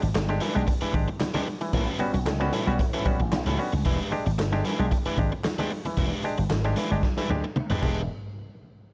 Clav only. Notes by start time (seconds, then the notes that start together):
0.03 D4 G4
0.29 G#3 D4 G4
0.41 E3
0.55 G#3 D4 G4
0.68 D4 G4
0.82 E3
0.94 G#3 D4 G4
1.34 G#3 D4 G4
1.61 E3
1.73 A2 E3
1.99 G3 B3 C#4 F#4
2.13 C#4 F#4
2.40 G3 B3 C#4 F#4
2.53 A2 E3
2.67 G3 B3 C#4 F#4
2.80 C#4 F#4
2.93 A2 E3
3.06 G3 B3 C#4 F#4
3.32 C#4 F#4
3.46 A2 E3
3.58 G3 B3 C#4 F#4
3.86 E3
4.12 G#3 D4 G4
4.26 D4 G4
4.52 G#3 D4 G4
4.65 E3
4.79 G#3 D4 G4
4.92 D4 G4
5.06 E3
5.18 G#3 D4 G4
5.59 G#3 D4 G4
5.86 E3
5.98 E3
6.24 G#3 D4 G4
6.39 D4 G4
6.64 G#3 D4 G4
6.77 E3
6.91 G#3 D4 G4
7.04 D4 G4
7.18 E3
7.30 G#3 D4 G4
7.70 G#3 D4 G4
7.82 G#3 D4 G4